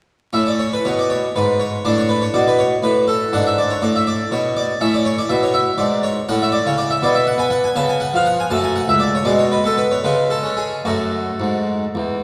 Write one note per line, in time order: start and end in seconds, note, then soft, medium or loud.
0.33 0.75 A2 medium
0.33 1.81 C#4 soft
0.33 0.46 E5 medium
0.47 0.60 D5 medium
0.59 0.72 C#5 medium
0.73 0.86 B4 medium
0.85 1.26 B2 medium
0.85 0.98 C#5 medium
0.99 1.11 D5 medium
1.10 1.36 C#5 medium
1.36 1.76 G#2 soft
1.36 1.61 B4 medium
1.60 1.85 C#5 medium
1.85 2.25 A2 medium
1.85 3.29 D4 soft
1.85 1.98 D5 medium
1.98 2.10 C#5 medium
2.09 2.22 B4 medium
2.22 2.35 C#5 medium
2.34 2.74 B2 medium
2.34 2.47 D5 medium
2.48 2.60 B4 medium
2.58 2.84 C#5 medium
2.83 3.23 A2 medium
2.83 3.05 B4 medium
3.08 3.33 A4 medium
3.33 3.73 G#2 medium
3.33 4.77 D4 soft
3.33 3.46 F#5 loud
3.47 3.59 E5 medium
3.58 3.71 D5 medium
3.71 3.83 C#5 medium
3.82 4.21 A2 medium
3.82 3.95 D5 medium
3.96 4.08 E5 medium
4.07 4.32 D5 medium
4.32 4.71 B2 medium
4.32 4.53 C#5 medium
4.57 4.81 D5 medium
4.81 5.20 A2 medium
4.81 6.24 C#4 soft
4.81 4.93 E5 loud
4.94 5.06 D5 medium
5.05 5.17 C#5 loud
5.18 5.30 D5 medium
5.29 5.69 B2 medium
5.29 5.42 E5 loud
5.43 5.54 C#5 medium
5.54 5.78 E5 loud
5.78 6.18 G#2 medium
5.78 6.03 D5 medium
6.03 6.28 C#5 loud
6.29 6.58 A2 medium
6.29 6.99 C#4 medium
6.29 6.41 F#5 loud
6.42 6.54 E5 medium
6.52 6.65 D5 loud
6.66 6.95 C#3 medium
6.66 6.78 C#5 loud
6.78 6.90 D5 loud
6.91 7.03 E5 medium
7.03 7.32 B2 medium
7.03 7.37 B3 soft
7.03 7.15 D5 loud
7.15 7.27 E5 medium
7.27 7.39 F#5 loud
7.38 7.68 B3 medium
7.38 7.52 G#5 loud
7.50 7.63 F#5 loud
7.64 7.76 G#5 loud
7.76 8.06 C#3 medium
7.76 8.46 B3 soft
7.76 7.88 A5 loud
7.89 8.01 G#5 medium
8.00 8.13 F#5 loud
8.14 8.44 F3 medium
8.14 8.27 F5 loud
8.26 8.38 F#5 loud
8.40 8.51 G#5 loud
8.50 8.80 F#2 medium
8.50 9.22 A3 soft
8.50 8.63 A5 loud
8.64 8.76 G#5 loud
8.76 8.88 F#5 loud
8.88 9.18 C#2 medium
8.88 9.01 E5 loud
9.00 9.12 D5 loud
9.15 9.27 C#5 loud
9.25 9.56 B2 medium
9.25 9.99 G#3 medium
9.25 9.38 D5 loud
9.39 9.51 C#5 medium
9.52 9.64 B4 medium
9.64 9.95 B3 medium
9.64 9.78 A4 medium
9.78 9.90 B4 medium
9.91 10.04 C#5 medium
10.04 10.36 C#3 medium
10.04 10.82 G#3 soft
10.04 10.27 B4 medium
10.30 10.58 A4 medium
10.43 10.77 C#4 medium
10.57 10.81 G#4 medium
10.85 11.29 F#2 medium
10.85 12.23 A3 soft
10.85 11.55 F#4 medium
11.40 11.84 G#2 soft
11.95 12.23 E2 soft